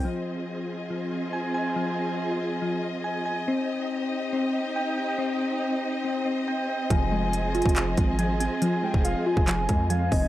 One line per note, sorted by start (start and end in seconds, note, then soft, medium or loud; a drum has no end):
0.05 0.89 F3 medium
0.05 3.44 C4 medium
0.05 3.44 F4 medium
0.05 3.44 G#4 medium
0.05 10.28 D#5 medium
0.90 1.11 F3 medium
1.12 1.75 F3 medium
1.33 1.53 G#5 loud
1.54 2.83 G#5 loud
1.76 2.61 F3 loud
2.62 2.82 F3 loud
2.83 3.48 F3 medium
3.04 3.24 G#5 medium
3.26 3.47 G#5 loud
3.47 10.28 C4 medium
3.47 4.32 C4 loud
3.47 6.87 D#4 medium
3.47 6.87 G4 medium
4.33 4.54 C4 loud
4.55 5.17 C4 medium
4.76 4.96 G5 loud
4.98 6.26 G5 loud
5.18 6.03 C4 loud
6.04 6.24 C4 medium
6.26 6.90 C4 medium
6.48 6.69 G5 medium
6.70 6.91 G5 medium
6.90 7.62 F1 loud
6.90 7.75 F3 medium
6.90 7.75 F3 loud
6.90 10.28 F4 medium
6.90 10.28 G#4 medium
6.90 8.15 G#5 loud
6.90 kick loud
6.90 closed hi-hat medium
7.12 7.96 G#3 medium
7.33 closed hi-hat medium
7.55 8.62 F4 loud
7.55 closed hi-hat soft
7.62 7.96 F1 loud
7.62 kick loud
7.62 closed hi-hat medium
7.69 closed hi-hat medium
7.76 7.96 F3 medium
7.76 8.18 F3 medium
7.76 clap loud
7.76 closed hi-hat loud
7.97 8.49 G#1 loud
7.97 8.61 F3 medium
7.97 8.82 G#3 medium
7.97 kick medium
7.97 closed hi-hat medium
8.19 8.61 F3 medium
8.19 8.39 G#5 loud
8.19 closed hi-hat medium
8.40 9.48 C4 medium
8.40 9.69 G#5 loud
8.40 closed hi-hat medium
8.62 9.47 F3 loud
8.62 9.46 F3 medium
8.62 closed hi-hat medium
8.83 9.68 G#3 medium
8.83 9.04 G5 medium
8.94 9.15 F1 loud
8.94 kick loud
9.05 9.25 F5 medium
9.05 closed hi-hat medium
9.26 10.28 F4 medium
9.26 9.87 G#5 medium
9.37 9.68 F1 loud
9.37 kick loud
9.47 9.89 F3 medium
9.47 9.68 F3 loud
9.47 clap loud
9.47 closed hi-hat loud
9.69 10.10 F2 loud
9.69 10.28 F3 medium
9.69 10.28 G#3 medium
9.69 kick medium
9.69 closed hi-hat medium
9.90 10.28 F3 medium
9.90 10.11 F5 medium
9.90 10.10 G#5 loud
9.90 closed hi-hat medium
10.11 10.28 F1 loud
10.11 10.28 C4 medium
10.11 10.28 D#5 medium
10.11 10.28 G#5 loud
10.11 kick loud
10.11 open hi-hat medium